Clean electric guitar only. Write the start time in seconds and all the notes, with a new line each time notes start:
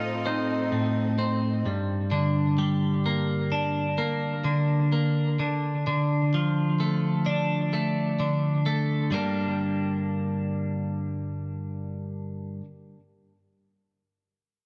Already playing: A2 A3 C4 D#4
0.26 C4
0.72 A2
1.19 C4
1.66 G2
2.11 D3
2.58 G3
3.06 A#3
3.52 D4
3.98 A#3
4.44 D3
4.92 A#3
5.39 D3
5.87 D3
6.34 F3
6.80 A3
7.26 D4
7.73 A3
8.20 D3
8.66 A3
9.11 G2 D3 G3 A#3
9.15 D4